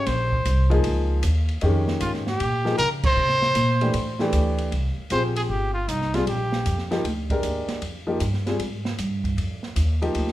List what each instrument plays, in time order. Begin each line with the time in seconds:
0.06 upright bass A#1, trumpet C5, snare, ride
0.32 kick
0.45 upright bass C2, hi-hat pedal, ride
0.70 upright piano F3 A#3 D#4 G#4, ride
0.84 upright bass C#2, ride
1.23 upright bass D#2, hi-hat pedal, ride
1.49 ride
1.61 upright bass F2, upright piano D#3 G#3 C#4 G4, ride
1.88 snare
2.00 upright bass G#2, trumpet F4, hi-hat pedal, ride
2.14 snare
2.27 trumpet G4, snare
2.40 upright bass A#2, ride
2.65 upright piano F3 A#3 D#4 G#4, snare
2.78 upright bass C#3, trumpet A#4, hi-hat pedal, ride
3.03 trumpet C5, kick, crash
3.17 upright bass C3
3.29 snare
3.42 snare
3.55 upright bass A#2, hi-hat pedal, ride
3.81 upright piano E3 A3 D4 G4, ride
3.94 upright bass A2, ride
4.19 upright piano E3 A3 D4 G4, snare
4.32 upright bass D2, hi-hat pedal, ride
4.58 ride
4.72 upright bass C2, ride
4.98 muted upright bass stroke
5.10 upright bass A#1, upright piano C4 F4 G4 G#4, trumpet C5, hi-hat pedal, ride
5.36 trumpet G#4, ride
5.49 upright bass G1, trumpet G4
5.74 trumpet F4
5.88 upright bass C2, trumpet D#4, hi-hat pedal, ride
6.01 snare
6.14 upright piano G3 C4 F4 G#4, trumpet F4, snare, ride
6.27 upright bass A#1, trumpet G4, ride
6.52 snare
6.66 upright bass F2, hi-hat pedal, ride
6.78 snare
6.91 upright piano F3 A#3 D#4 G4, snare, ride
7.04 upright bass D2, ride
7.30 upright piano G#3 D4 G4 A#4, kick, ride
7.43 upright bass D#2, hi-hat pedal, ride
7.68 muted upright bass stroke, snare, ride
7.81 upright bass F2, ride
8.07 upright piano F3 A#3 D#4 G4
8.20 upright bass G2, hi-hat pedal, ride
8.33 snare
8.46 upright piano G3 C4 F4 G#4, snare, ride
8.59 upright bass G#2, ride
8.85 snare
8.98 upright bass G2, hi-hat pedal, ride
9.24 kick, ride
9.37 upright bass F2, ride
9.63 snare
9.76 upright bass D#2, hi-hat pedal, ride
10.02 upright piano F3 A#3 D#4 G4, ride
10.15 upright bass D2, ride
10.28 snare